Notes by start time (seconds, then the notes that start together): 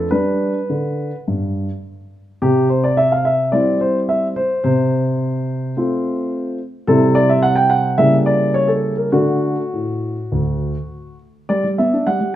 0.11 G3 D4 B4
0.70 D3
1.28 G2
2.42 C3 G4
2.69 C5
2.84 D5
2.97 E5
3.12 F5
3.25 E5
3.52 G3 C4 E4 D5
3.81 C5
4.09 E5
4.36 C5
4.64 C3 C5
5.77 A3 C4 F4
6.87 C3 G3 C4 E4 A4
7.15 D5
7.29 E5
7.42 F#5
7.56 G5
7.70 F#5
7.98 C#3 G3 A#3 E4 E5
8.26 D5
8.54 C#5
8.68 A4
8.97 A#4
9.12 D3 A3 D4 F#4
9.73 A2
10.32 D2
11.49 G3 D5
11.64 G3
11.78 B3 E5
11.93 D4
12.07 G3 F#5
12.21 G3